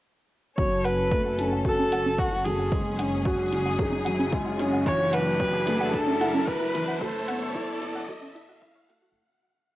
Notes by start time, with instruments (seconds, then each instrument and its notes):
0.58 detuned saw bass F#1, string section F#3 C#4 A4, felt piano F#3, synth arpeggio sound F#4, viola C#5, kick, riser
0.85 viola B4, synth arpeggio sound F#5, closed hi-hat
1.12 felt piano A3, synth arpeggio sound C#5, kick
1.38 felt piano C#4, synth arpeggio sound E4, closed hi-hat
1.53 synth arpeggio sound F#5
1.65 felt piano F#4, synth arpeggio sound F#4, viola A4, kick
1.79 synth arpeggio sound C#4
1.92 felt piano A4, synth arpeggio sound F#5, closed hi-hat
2.06 synth arpeggio sound C#4
2.18 viola F#4, kick
2.32 synth arpeggio sound E4
2.45 felt piano F#3, synth arpeggio sound E4, viola G#4, closed hi-hat
2.59 synth arpeggio sound F#5
2.72 detuned saw bass F#1, felt piano G#3, synth arpeggio sound F#4, string section G#4, kick
2.99 felt piano C#4, synth arpeggio sound F#5, closed hi-hat
3.25 felt piano F#4, synth arpeggio sound C#5, kick
3.52 synth arpeggio sound E4, closed hi-hat
3.66 synth arpeggio sound F#5
3.79 synth arpeggio sound F#4, felt piano G#4, kick
3.92 synth arpeggio sound C#4
4.05 felt piano F#3, synth arpeggio sound F#5, closed hi-hat
4.19 synth arpeggio sound C#4
4.33 felt piano G#3, kick
4.46 synth arpeggio sound E4
4.59 felt piano C#4, synth arpeggio sound E4, closed hi-hat
4.73 synth arpeggio sound F#5
4.86 detuned saw bass F#1, felt piano E3, string section D4 E4, synth arpeggio sound F#4, viola C#5, kick
5.13 viola B4, synth arpeggio sound F#5, closed hi-hat
5.40 felt piano F#3, synth arpeggio sound C#5, kick
5.67 felt piano A3, synth arpeggio sound E4, closed hi-hat
5.80 synth arpeggio sound F#5
5.94 felt piano D4, synth arpeggio sound F#4, viola A4, kick
6.07 synth arpeggio sound C#4
6.21 felt piano E4, synth arpeggio sound F#5, closed hi-hat
6.34 synth arpeggio sound C#4
6.47 viola B4, kick
6.61 synth arpeggio sound E4
6.74 felt piano E3, synth arpeggio sound E4, closed hi-hat
6.88 synth arpeggio sound F#5
7.00 detuned saw bass F#1, felt piano A3, synth arpeggio sound F#4, string section A4, viola A4, kick
7.28 felt piano B3, synth arpeggio sound F#5, closed hi-hat
7.55 felt piano E4, synth arpeggio sound C#5, kick
7.81 synth arpeggio sound E4, closed hi-hat
7.95 synth arpeggio sound F#5
8.08 synth arpeggio sound F#4, felt piano A4, kick
8.22 synth arpeggio sound C#4
8.35 synth arpeggio sound E4, felt piano E4, closed hi-hat
8.49 synth arpeggio sound F#4
8.62 felt piano E4, kick
8.75 synth arpeggio sound C#5
8.89 felt piano A3, synth arpeggio sound F#4, closed hi-hat
9.02 synth arpeggio sound F#4